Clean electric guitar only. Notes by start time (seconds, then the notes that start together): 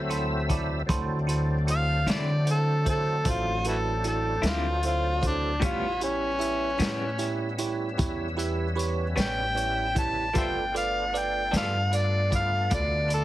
2.07 D3 F#3 C4 E4
4.42 D3 F#3 C4 E4
5.60 A2 G3 B3 C#4
6.79 A2 G3 B3 C#4
9.16 A2 G3 B3 C#4
10.34 G3 B3 F4 A4
11.51 G3 B3 F4 A4